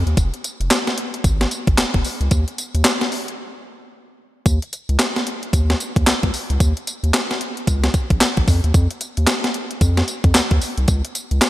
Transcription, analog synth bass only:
0.07 0.15 D#2 medium
0.17 0.30 F1 loud
0.60 0.69 F1 medium
1.24 1.46 G#1 loud
1.68 1.76 G#1 medium
1.78 1.85 F1 soft
1.94 2.03 F1 medium
2.21 2.29 C#2 medium
2.31 2.45 D#2 loud
2.75 2.83 D#2 loud
4.46 4.59 D#2 loud
4.89 4.97 C#2 medium
5.53 5.75 D#2 loud
5.96 6.05 D#2 loud
6.07 6.13 C#2 soft
6.23 6.31 C#2 medium
6.50 6.58 C#2 medium
6.60 6.73 D#2 loud
7.03 7.12 D#2 medium
7.67 7.89 C#2 loud
8.10 8.19 A#1 loud
8.37 8.46 A#1 medium
8.48 8.61 F2 medium
8.64 8.72 D#2 medium
8.74 8.88 F2 loud
9.18 9.26 D#2 medium
9.81 10.03 F2 loud
10.24 10.33 F2 medium
10.35 10.41 D#2 soft
10.51 10.60 D#2 medium
10.78 10.86 C2 medium
10.88 11.02 C#2 loud
11.31 11.40 C#2 loud

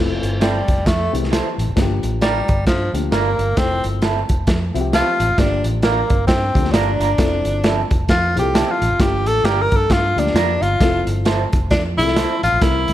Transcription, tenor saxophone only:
0.42 0.88 G3 medium
0.87 1.13 A3 medium
2.22 2.64 G3 loud
2.67 2.92 F3 medium
3.12 3.59 A#3 medium
3.57 3.84 C4 loud
4.94 5.40 F4 loud
5.39 5.65 D4 medium
5.84 6.26 A#3 medium
6.27 6.73 C4 loud
6.72 7.90 D4 medium
8.09 8.37 F4 medium
8.39 8.72 G4 medium
8.71 9.02 F4 medium
9.01 9.29 G4 medium
9.27 9.46 A4 loud
9.45 9.63 G4 medium
9.61 9.77 A#4 loud
9.75 9.94 A4 medium
9.92 10.21 F4 loud
10.19 10.64 D4 loud
10.62 11.07 F4 loud
11.71 11.83 D4 medium
11.98 12.40 E4 loud
12.43 12.63 F4 loud
12.61 12.93 E4 loud

